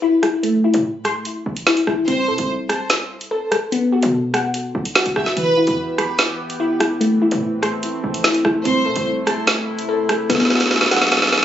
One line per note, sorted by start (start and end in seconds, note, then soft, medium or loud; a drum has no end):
0.00 0.21 E4 medium
0.00 0.43 B5 loud
0.23 0.43 E4 medium
0.23 cross-stick loud
0.23 closed hi-hat medium
0.43 1.67 A3 medium
0.43 closed hi-hat loud
0.64 1.66 E4 medium
0.74 1.14 A2 loud
0.74 closed hi-hat medium
1.05 2.08 C6 loud
1.05 cross-stick loud
1.05 closed hi-hat medium
1.25 closed hi-hat medium
1.46 1.66 A1 loud
1.57 closed hi-hat medium
1.67 1.86 E4 loud
1.67 snare loud
1.77 closed hi-hat loud
1.87 2.07 A1 loud
1.87 2.08 E4 medium
1.87 cross-stick loud
2.08 2.30 C2 loud
2.08 3.31 C4 medium
2.08 2.46 C5 loud
2.08 closed hi-hat loud
2.28 2.38 C3 loud
2.28 3.30 A4 medium
2.38 3.33 C2 loud
2.38 closed hi-hat medium
2.69 3.72 A5 loud
2.69 cross-stick loud
2.69 closed hi-hat medium
2.90 snare loud
2.90 closed hi-hat medium
3.21 closed hi-hat medium
3.31 3.60 D#2 loud
3.31 3.50 A4 loud
3.52 3.72 A4 medium
3.52 cross-stick loud
3.52 closed hi-hat medium
3.72 4.95 B3 loud
3.72 closed hi-hat loud
3.92 4.94 F#4 medium
4.03 4.72 B2 loud
4.03 closed hi-hat medium
4.34 5.37 F#5 loud
4.34 cross-stick loud
4.34 closed hi-hat medium
4.54 closed hi-hat medium
4.75 5.05 B1 loud
4.85 closed hi-hat medium
4.95 5.15 F#4 medium
4.95 snare loud
5.06 5.16 B1 loud
5.06 closed hi-hat loud
5.16 5.36 B1 loud
5.16 5.37 F#4 medium
5.16 5.35 E5 medium
5.16 cross-stick loud
5.26 snare medium
5.36 5.59 E1 loud
5.36 8.62 E3 medium
5.36 6.60 E3 medium
5.36 6.99 B3 medium
5.36 6.99 G4 loud
5.36 5.75 B4 loud
5.36 closed hi-hat loud
5.57 5.67 G1 loud
5.57 6.59 E4 medium
5.67 6.36 E2 loud
5.67 closed hi-hat medium
5.98 7.01 B5 loud
5.98 cross-stick medium
5.98 closed hi-hat medium
6.19 snare loud
6.19 closed hi-hat medium
6.50 closed hi-hat medium
6.60 6.79 E4 medium
6.80 7.01 E4 medium
6.80 cross-stick loud
6.80 closed hi-hat medium
7.01 8.24 A3 medium
7.01 10.26 A3 medium
7.01 8.64 C4 loud
7.01 closed hi-hat loud
7.22 8.23 E4 medium
7.31 7.71 A2 loud
7.31 closed hi-hat medium
7.62 8.65 C6 loud
7.62 cross-stick loud
7.62 closed hi-hat medium
7.83 closed hi-hat medium
8.04 8.23 A1 loud
8.14 closed hi-hat medium
8.24 8.44 E4 loud
8.24 snare loud
8.34 closed hi-hat medium
8.45 8.65 A1 loud
8.45 8.65 E4 medium
8.45 cross-stick loud
8.65 8.87 C2 loud
8.65 10.28 C3 medium
8.65 9.89 C4 medium
8.65 11.45 E4 loud
8.65 9.04 C5 loud
8.65 closed hi-hat loud
8.86 8.96 C3 loud
8.86 9.87 A4 medium
8.96 9.90 C2 loud
8.96 closed hi-hat medium
9.27 10.30 A5 loud
9.27 cross-stick loud
9.27 closed hi-hat medium
9.47 snare loud
9.47 closed hi-hat medium
9.79 closed hi-hat medium
9.89 10.18 D#2 loud
9.89 10.08 A4 medium
10.09 10.30 A4 medium
10.09 cross-stick loud
10.09 closed hi-hat medium
10.30 10.99 B1 loud
10.30 11.45 F#3 medium
10.30 11.45 B3 loud
10.30 11.45 B3 medium
10.30 snare medium
10.30 closed hi-hat loud
10.35 snare medium
10.40 snare medium
10.45 snare medium
10.50 11.45 F#4 medium
10.50 snare medium
10.55 snare medium
10.60 snare medium
10.60 closed hi-hat medium
10.66 snare medium
10.71 snare medium
10.76 snare medium
10.81 snare medium
10.86 snare medium
10.91 11.45 F#5 loud
10.91 snare medium
10.91 closed hi-hat medium
10.96 snare medium
11.02 snare medium
11.07 snare medium
11.12 snare medium
11.12 closed hi-hat medium
11.17 snare medium
11.22 snare medium
11.27 snare medium
11.33 snare medium
11.38 snare medium